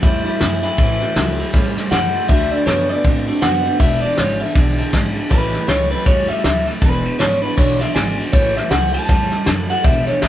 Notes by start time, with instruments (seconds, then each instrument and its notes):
0.02 upright bass E2, steel-string acoustic guitar A2 E3 A3 C#4 E4, clean electric guitar A2 G3 E4, kick, snare, ride
0.24 clean electric guitar A2 G3 E4, steel-string acoustic guitar A3 C#4 E4, ride
0.40 upright bass F#2, clean electric guitar A2 F#3, steel-string acoustic guitar E3 A3 C#4 E4, snare, ride
0.62 clean electric guitar A2 F#3 E4, steel-string acoustic guitar A3 C#4 E4, snare, ride
0.77 upright bass A1, steel-string acoustic guitar A2 E3 A3 C#4 E4, clean electric guitar A2 E3, kick, ride
1.00 clean electric guitar A2 E3, steel-string acoustic guitar A3 C#4 E4, snare, ride
1.15 upright bass C#2, clean electric guitar A2 F#3, steel-string acoustic guitar E3 A3 C#4 E4, snare, ride
1.37 clean electric guitar A2 F#3, steel-string acoustic guitar A3 C#4 E4, ride
1.52 upright bass E2, steel-string acoustic guitar A2 E3 A3 C#4 E4, clean electric guitar A2 G3, kick, snare, ride
1.75 clean electric guitar A2 G3, steel-string acoustic guitar A3 C#4 E4, snare, ride
1.91 upright bass F#2, clean electric guitar A2 F#3 F#5, steel-string acoustic guitar E3 A3 C#4, snare, ride
1.95 steel-string acoustic guitar E4
2.13 clean electric guitar A2 F#3, steel-string acoustic guitar A3 C#4 E4, ride
2.28 upright bass D2, steel-string acoustic guitar D3 A3 D4 F#4, clean electric guitar D3 A3 E5, kick, ride
2.51 clean electric guitar D3 A3 D5, steel-string acoustic guitar A3 D4 F#4, ride
2.66 upright bass F#2, steel-string acoustic guitar D3 A3 D4, clean electric guitar D3 B3 C#5, snare, ride
2.70 steel-string acoustic guitar F#4
2.89 clean electric guitar D3 B3 D5, steel-string acoustic guitar D4 F#4, ride
2.93 steel-string acoustic guitar A3
3.04 upright bass A2, clean electric guitar D3 C4, steel-string acoustic guitar D3 A3 D4 F#4, kick, ride
3.26 clean electric guitar D3 C4, steel-string acoustic guitar A3 D4 F#4, ride
3.42 upright bass F#2, steel-string acoustic guitar D3 A3 D4 F#4, clean electric guitar D3 B3 F#5, snare, ride
3.65 clean electric guitar D3 B3, steel-string acoustic guitar A3 D4 F#4, ride
3.80 upright bass E1, steel-string acoustic guitar E2 B2 E3 G#3 D4 E4, clean electric guitar E2 B2 E5, kick, ride
4.02 clean electric guitar E2 B2 D5, steel-string acoustic guitar E3 G#3 D4 E4, ride
4.17 upright bass G#1, clean electric guitar E2 C#3 C#5, steel-string acoustic guitar E3 G#3 D4, snare, ride
4.22 steel-string acoustic guitar E4
4.40 clean electric guitar E2 C#3 E5, steel-string acoustic guitar G#3 D4 E4, ride
4.44 steel-string acoustic guitar E3
4.55 upright bass B1, steel-string acoustic guitar E2 B2 E3 G#3 D4 E4, clean electric guitar E2 D3, kick, snare, ride
4.78 clean electric guitar E2 D3, steel-string acoustic guitar E3 G#3 D4 E4, ride
4.92 upright bass G#1, clean electric guitar E2 C#3, steel-string acoustic guitar E3 G#3 D4 E4, kick, snare, ride
5.14 clean electric guitar E2 C#3, steel-string acoustic guitar E3 G#3 D4 E4, ride
5.30 upright bass A1, steel-string acoustic guitar A2 E3 A3 C#4 E4, clean electric guitar A2 E3 B4, kick, ride
5.52 clean electric guitar A2 E3, steel-string acoustic guitar A3 C#4 E4, snare, ride
5.67 upright bass C#2, clean electric guitar A2 F#3 C#5, steel-string acoustic guitar E3 A3 E4, snare, ride
5.89 clean electric guitar A2 F#3 B4, steel-string acoustic guitar A3 C#4 E4, ride
6.05 upright bass E2, steel-string acoustic guitar A2 E3 A3 C#4 E4, clean electric guitar A2 G3 C#5, kick, snare, ride
6.28 clean electric guitar A2 G3 E5, steel-string acoustic guitar A3 C#4 E4, ride
6.43 upright bass D2, clean electric guitar A2 F#3 E5, steel-string acoustic guitar E3 A3 C#4 E4, snare, ride
6.66 clean electric guitar A2 F#3, steel-string acoustic guitar A3 C#4 E4, snare, ride
6.81 upright bass E1, steel-string acoustic guitar E2 B2 E3 G#3 D4 E4, clean electric guitar E2 B2 B4, kick, ride
7.03 clean electric guitar E2 B2, steel-string acoustic guitar E3 G#3 D4 E4, ride
7.19 upright bass G#1, clean electric guitar E2 C#3 C#5, steel-string acoustic guitar E3 G#3 D4 E4, snare, ride
7.40 clean electric guitar E2 C#3 B4, steel-string acoustic guitar E3 G#3 D4 E4, ride
7.57 upright bass B1, steel-string acoustic guitar E2 B2 E3 G#3 D4 E4, clean electric guitar E2 D3 C#5, kick, snare, ride
7.80 clean electric guitar E2 D3 E5, steel-string acoustic guitar E3 G#3 D4 E4, snare, ride
7.95 upright bass G#1, clean electric guitar E2 C#3 G#5, steel-string acoustic guitar E3 G#3 D4 E4, snare, ride
8.17 clean electric guitar E2 C#3, steel-string acoustic guitar G#3 D4 E4, ride
8.21 steel-string acoustic guitar E3
8.32 upright bass A1, clean electric guitar A2 E3 C#5, steel-string acoustic guitar A2 E3 A3 C#4 E4, kick, ride
8.55 clean electric guitar A2 E3 E5, steel-string acoustic guitar A3 C#4 E4, snare, ride
8.70 upright bass C#2, clean electric guitar A2 F#3 F#5, steel-string acoustic guitar E3 A3 C#4 E4, snare, ride
8.92 clean electric guitar A2 F#3 A5, steel-string acoustic guitar A3 C#4 E4, ride
9.07 upright bass E2, steel-string acoustic guitar A2 E3 A3 C#4 E4, clean electric guitar A2 G3, kick, snare, ride
9.30 clean electric guitar A2 G3, steel-string acoustic guitar A3 C#4 E4, snare, ride
9.46 upright bass F#2, clean electric guitar A2 F#3, steel-string acoustic guitar E3 A3 C#4 E4, snare, ride
9.69 clean electric guitar A2 F#3 F#5, steel-string acoustic guitar A3 C#4 E4, snare, ride
9.84 upright bass E1, steel-string acoustic guitar E2 B2 E3 G#3 D4 E4, clean electric guitar E2 B2 E5, kick, ride
10.06 clean electric guitar E2 B2 C#5, steel-string acoustic guitar G#3 D4 E4, snare, ride
10.11 steel-string acoustic guitar E3
10.22 upright bass G#1, clean electric guitar E2 C#3 E5, steel-string acoustic guitar E3 G#3 D4, snare, ride